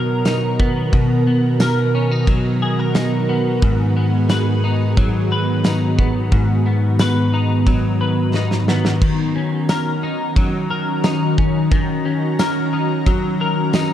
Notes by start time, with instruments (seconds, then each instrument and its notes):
Already playing: clean electric guitar B2 F#3 B3 D#4 A#4, ambient pad D#3 B3 F#4 A#4
0.25 clean electric guitar D#4, snare, ride, tambourine
0.60 clean electric guitar B3, kick
0.93 clean electric guitar B2, kick, ride
1.27 clean electric guitar B3
1.60 clean electric guitar A#4, snare, ride, tambourine
1.95 clean electric guitar C#4
2.11 clean electric guitar D#4
2.27 clean electric guitar F#3, kick, ride
2.62 clean electric guitar G#4
2.79 clean electric guitar A#4
2.95 clean electric guitar D#4, snare, ride, tambourine
3.29 clean electric guitar B3
3.62 clean electric guitar G#2, ambient pad G#4, kick, ride
3.97 clean electric guitar B3
4.29 clean electric guitar B4, snare, ride, tambourine
4.64 clean electric guitar D#4
4.97 clean electric guitar F#3, kick, ride
5.32 clean electric guitar B4
5.64 clean electric guitar D#4, snare, ride, tambourine
5.99 clean electric guitar B3, kick
6.32 clean electric guitar G#2, ambient pad A#5, kick, ride
6.66 clean electric guitar B3
6.99 clean electric guitar B4, snare, ride, tambourine
7.34 clean electric guitar D#4
7.67 clean electric guitar F#3, kick, ride
8.01 clean electric guitar B4
8.34 clean electric guitar D#4, snare
8.51 snare
8.68 clean electric guitar B3, snare
8.85 snare
9.02 clean electric guitar D#3, ambient pad D#3 C#4 F#4, kick, crash
9.36 clean electric guitar C#4
9.69 clean electric guitar A#4, snare, ride, tambourine
10.03 clean electric guitar D#4
10.36 clean electric guitar F#3, kick, ride
10.70 clean electric guitar A#4
11.04 clean electric guitar D#4, snare, ride, tambourine
11.38 clean electric guitar C#4, kick
11.71 clean electric guitar D#3, kick, ride
12.05 clean electric guitar C#4
12.39 clean electric guitar A#4, snare, ride, tambourine
12.73 clean electric guitar D#4
13.06 clean electric guitar F#3, kick, ride
13.41 clean electric guitar A#4
13.73 clean electric guitar D#4, snare, ride, tambourine